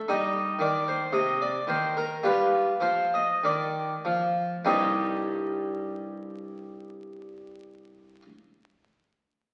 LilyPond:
<<
  \new Staff \with { instrumentName = "Harpsichord" } { \time 4/4 \key c \minor \tempo 4 = 49 << { ees''8 d''16 c''16 ees''16 d''16 c''16 bes'16 b'8 c''16 ees''16 d''4 | <c, g, g c' ees' g' ees''>1 | } \\ { ees'2 f'2 | r1 | } >> }
  \new Staff \with { instrumentName = "Harpsichord" } { \clef bass \time 4/4 \key c \minor g8 ees8 c8 ees8 g8 f8 ees8 f8 | r1 | }
>>